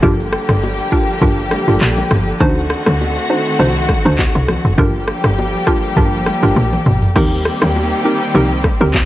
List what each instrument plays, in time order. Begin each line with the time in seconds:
Already playing: string section D3
0.03 log drum bass G1, string section F3 G3 A#3 G4, synth pluck D4 F4 G4 A#4, kick, cross-stick, low conga, shaker
0.20 shaker
0.33 cross-stick
0.49 log drum bass G1, cross-stick, low bongo, shaker
0.63 high bongo, shaker
0.79 shaker
0.92 synth pluck D4 F4 G4 A#4, kick
1.08 shaker
1.22 log drum bass G1, synth pluck D4 F4 G4 A#4, kick, low conga, shaker
1.38 shaker
1.51 cross-stick, low bongo, shaker
1.67 log drum bass G1, synth pluck D4 F4 G4 A#4, shaker
1.80 log drum bass A#1, clap, high bongo, shaker
1.97 low bongo, shaker
2.11 log drum bass G1, cross-stick, high bongo, low conga, shaker
2.27 shaker
2.40 log drum bass D2, string section D#3 A3 C4 F#4, synth pluck D4 D#4 F#4 C5, kick, cross-stick, low conga, shaker
2.58 shaker
2.70 cross-stick
2.86 log drum bass D2, cross-stick, low bongo, shaker
3.01 high bongo, shaker
3.17 shaker
3.29 synth pluck D4 D#4 F#4 C5
3.45 shaker
3.59 log drum bass C2, synth pluck D4 D#4 F#4 C5, low conga, shaker
3.76 shaker
3.88 kick, cross-stick, low bongo, shaker
4.05 log drum bass D2, synth pluck D4 D#4 F#4 C5, shaker
4.18 kick, clap, high bongo, shaker
4.35 log drum bass C2, low bongo, shaker
4.48 cross-stick, high bongo, low conga, shaker
4.65 log drum bass F#1, shaker
4.78 log drum bass G1, string section F3 G3 A#3 G4, synth pluck D4 F4 G4 A#4, kick, cross-stick, low conga, shaker
4.95 shaker
5.08 cross-stick
5.24 log drum bass G1, cross-stick, low bongo, shaker
5.38 high bongo, shaker
5.54 shaker
5.67 synth pluck D4 F4 G4 A#4, kick, cross-stick, shaker
5.83 shaker
5.97 log drum bass G1, synth pluck D4 F4 G4 A#4, kick, low conga, shaker
6.13 shaker
6.26 cross-stick, low bongo, shaker
6.43 log drum bass G1, synth pluck D4 F4 G4 A#4, shaker
6.56 log drum bass A#1, high tom, high bongo, shaker
6.73 mid tom, low bongo, shaker
6.86 log drum bass G1, mid tom, high bongo, low conga, shaker
7.02 floor tom, shaker
7.16 log drum bass D#2, string section D#3 G3 A#3 C4 G4, synth pluck C4 D#4 G4 A#4, kick, cross-stick, crash, low conga, shaker
7.33 shaker
7.45 cross-stick
7.62 log drum bass D#2, cross-stick, low bongo, shaker
7.76 high bongo, shaker
7.92 shaker
8.05 synth pluck C4 D#4 G4 A#4
8.21 shaker
8.35 log drum bass C2, synth pluck C4 D#4 G4 A#4, low conga, shaker
8.51 shaker
8.64 kick, cross-stick, low bongo, shaker
8.80 log drum bass D2, synth pluck C4 D#4 G4 A#4, shaker
8.93 kick, clap, high bongo, shaker